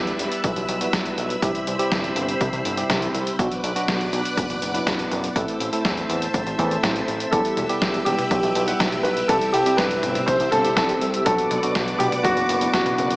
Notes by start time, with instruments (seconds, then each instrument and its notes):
Already playing: analog synth bass E1, tine electric piano G3 B3 E4 G4, string machine B4 E5 B5 E6
0.07 closed hi-hat
0.19 analog synth bass E1, closed hi-hat
0.32 closed hi-hat
0.44 analog synth bass B1, kick, closed hi-hat
0.56 analog synth bass B1, closed hi-hat
0.68 analog synth bass B1, closed hi-hat
0.81 tine electric piano G3 B3 E4 F#4, closed hi-hat
0.93 analog synth bass B1, kick, snare, closed hi-hat
1.05 closed hi-hat
1.18 analog synth bass B1, closed hi-hat
1.30 closed hi-hat
1.42 analog synth bass C2, tine electric piano C3 G3 C4 E4 G4, string machine C5, kick, closed hi-hat
1.55 closed hi-hat
1.67 analog synth bass C2, closed hi-hat
1.79 tine electric piano C3 G3 C4 E4 G4, closed hi-hat
1.92 analog synth bass G1, kick, snare, closed hi-hat
2.04 closed hi-hat
2.16 analog synth bass G1, closed hi-hat
2.29 closed hi-hat
2.41 analog synth bass C2, kick, closed hi-hat
2.53 analog synth bass C2, closed hi-hat
2.65 analog synth bass G1, closed hi-hat
2.77 tine electric piano C3 G3 C4 E4 G4, closed hi-hat
2.90 analog synth bass C2, kick, snare, closed hi-hat
3.02 closed hi-hat
3.14 analog synth bass C2, closed hi-hat
3.27 closed hi-hat
3.39 analog synth bass B1, tine electric piano B2 F#3 B3 D4 F#4, string machine B4 D5 F#5 D6, kick, closed hi-hat
3.52 closed hi-hat
3.64 analog synth bass B1, closed hi-hat
3.76 tine electric piano B2 F#3 B3 D4 F#4, closed hi-hat
3.88 analog synth bass B1, kick, snare, closed hi-hat
4.01 closed hi-hat
4.13 analog synth bass B1, closed hi-hat
4.25 closed hi-hat
4.37 analog synth bass F#1, kick, closed hi-hat
4.50 analog synth bass F#1, closed hi-hat
4.62 analog synth bass F#1, closed hi-hat
4.74 tine electric piano B2 F#3 B3 D4 E4, closed hi-hat
4.87 analog synth bass F#1, kick, snare, closed hi-hat
4.99 closed hi-hat
5.11 analog synth bass F#1, closed hi-hat
5.24 closed hi-hat
5.36 analog synth bass A1, tine electric piano A2 A3 C4 E4 A4, string machine C5 E5 A5 E6, kick, closed hi-hat
5.48 closed hi-hat
5.60 analog synth bass A1, closed hi-hat
5.73 tine electric piano A2 A3 C4 E4 A4, closed hi-hat
5.85 analog synth bass E2, kick, snare, closed hi-hat
5.97 closed hi-hat
6.09 analog synth bass E2, closed hi-hat
6.22 closed hi-hat
6.34 analog synth bass A1, kick, closed hi-hat
6.46 analog synth bass A1, closed hi-hat
6.59 analog synth bass E2, tine electric piano A2 A3 C4 E4 A4, kick, closed hi-hat
6.71 closed hi-hat
6.83 analog synth bass A1, kick, snare, closed hi-hat
6.96 closed hi-hat
7.08 analog synth bass A1, closed hi-hat
7.20 closed hi-hat
7.31 analog synth bass E1, tine electric piano G3 B3 E4 G4, string machine G4 B4, grand piano A4, kick, closed hi-hat
7.45 closed hi-hat
7.57 analog synth bass E1, closed hi-hat, high tom
7.69 tine electric piano G3 B3 E4 G4, closed hi-hat
7.82 analog synth bass E1, kick, snare, closed hi-hat
7.94 closed hi-hat
8.05 analog synth bass E1, grand piano G4, closed hi-hat, high tom
8.19 closed hi-hat, high tom
8.31 analog synth bass B1, kick, closed hi-hat
8.43 analog synth bass B1, closed hi-hat
8.55 analog synth bass B1, closed hi-hat
8.68 tine electric piano G3 B3 E4 F#5, closed hi-hat
8.80 analog synth bass B1, kick, snare, closed hi-hat
8.92 closed hi-hat, high tom
9.03 analog synth bass B1, grand piano B4, closed hi-hat
9.17 closed hi-hat
9.28 analog synth bass C2, tine electric piano C3 G3 C4 E4 G4, string machine C4, grand piano A4, kick, closed hi-hat
9.41 closed hi-hat
9.53 analog synth bass C2, grand piano G4, closed hi-hat
9.66 tine electric piano C3 G3 C4 E4 G4, closed hi-hat
9.77 analog synth bass G1, grand piano B4, kick, snare, closed hi-hat
9.91 closed hi-hat
10.03 analog synth bass G1, closed hi-hat, high tom
10.15 closed hi-hat, high tom
10.26 analog synth bass C2, grand piano C5, kick, closed hi-hat
10.40 analog synth bass C2, closed hi-hat
10.51 analog synth bass G1, grand piano A4, closed hi-hat, high tom
10.64 tine electric piano C3 G3 C4 E4 G4, closed hi-hat
10.76 analog synth bass C2, grand piano A4, kick, snare, closed hi-hat
10.89 closed hi-hat
11.01 analog synth bass C2, closed hi-hat
11.14 closed hi-hat
11.25 analog synth bass B1, tine electric piano B2 F#3 B3 D4 F#4, grand piano A4, string machine B4 D5 F#5 D6, kick, closed hi-hat
11.38 closed hi-hat
11.51 analog synth bass B1, closed hi-hat, high tom
11.63 tine electric piano B2 F#3 B3 D4 F#4, closed hi-hat
11.75 analog synth bass B1, kick, snare, closed hi-hat
11.88 closed hi-hat
11.99 analog synth bass B1, grand piano G4, closed hi-hat, high tom
12.12 closed hi-hat, high tom
12.23 analog synth bass F#1, grand piano F#4, kick, closed hi-hat
12.37 analog synth bass F#1, closed hi-hat
12.49 analog synth bass F#1, closed hi-hat
12.61 tine electric piano B2 F#3 B3 D4 E4, closed hi-hat
12.73 analog synth bass F#1, grand piano F#4, kick, snare, closed hi-hat
12.86 closed hi-hat, high tom
12.98 analog synth bass F#1, closed hi-hat
13.10 closed hi-hat